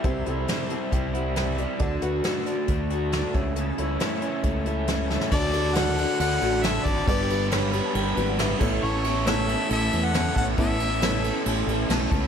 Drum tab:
CC |----------------|----------------|----------------|x---------------|
RD |----------------|----------------|----------------|--x-x-x-x-x-x-x-|
HH |x-x-x-x-x-x-x-x-|x-x-x-x-x-x-x-x-|x-x-x-x-x-x-x---|----------------|
SD |----o-------o---|----o-------o---|----o-------o-oo|----o-------o---|
BD |o-------o-------|o-------o-----o-|--------o-------|o-------------o-|

CC |--------------x-|----------------|----------------|
RD |x-x-x-x-x-x-x---|--x-x-x-x-x-x-x-|x-x-x-x-x-x-x-x-|
HH |----------------|----------------|----------------|
SD |----o-------o---|----o-------o---|----o-------o---|
BD |o-------------o-|--------------o-|o-------------o-|